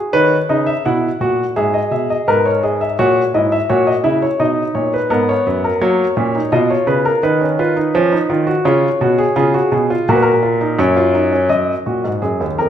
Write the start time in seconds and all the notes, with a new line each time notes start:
Already playing: G#4
0.13 D#3 B4 C#5
0.49 C#3 D#4 D#5
0.67 E5
0.85 B2 E4 F#5
1.21 A#2 F#4
1.56 G#2 G#4 E5
1.74 D#5
1.91 B2 E5
2.10 D#5
2.28 G#2 A#4 B4
2.46 C#5
2.63 G#4 D#5
2.81 E5
2.99 A#2 F#4 C#5
3.34 G#2 E4 D#5
3.52 E5
3.69 A#2 F#4 C#5
3.87 D#5
4.04 C#3 E4 E5
4.22 C#5
4.40 B2 D#4 D#5
4.75 A#2 C#5
4.94 B4
5.10 G#2 B3 A#4
5.29 C#5
5.47 F#2 B4
5.64 A#4
5.81 F#3 A#3 C#5
6.17 A#2 C#4
6.36 D#4
6.52 B2 F4 D#5
6.70 C#5
6.87 C#3 B4
7.05 A#4
7.23 D#3 D#4 B4
7.41 C#4
7.59 F4 B4
7.77 D#4
7.95 F3 C#4
8.12 D#4
8.30 D#3 F4
8.47 F#4
8.65 C#3 F4 C#5
9.01 B2 F#4
9.18 G#4
9.36 C#3 F4 G#4
9.54 F#4
9.72 B2 G#4
9.90 F4
10.09 A#2 F#4 A#4
10.15 B4
10.22 A#4
10.43 F4
10.61 D#4
10.79 F#2 C#4 C#5
10.97 F4
11.15 D#4
11.33 C#4
11.49 F#2 D#5
11.86 A#2 F#4
12.04 G#2
12.22 F#2 G#4
12.40 D#2
12.58 F2 A#4